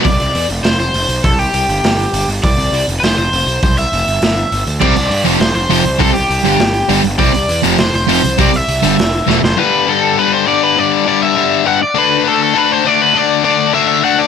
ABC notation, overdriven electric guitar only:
X:1
M:4/4
L:1/16
Q:1/4=202
K:C
V:1 name="Overdriven electric guitar"
d6 z2 c2 c6 | A2 G12 z2 | d6 z3/2 B/2 c2 c6 | c2 e12 z2 |
d6 z2 c2 c6 | A2 G12 z2 | d6 z2 c2 c6 | d2 e12 c2 |
[K:G] B4 A4 B2 c2 d2 B2 | d4 d2 e6 f2 d2 | B4 A2 A2 B2 c2 d2 B2 | d4 d4 e2 e2 f2 d2 |]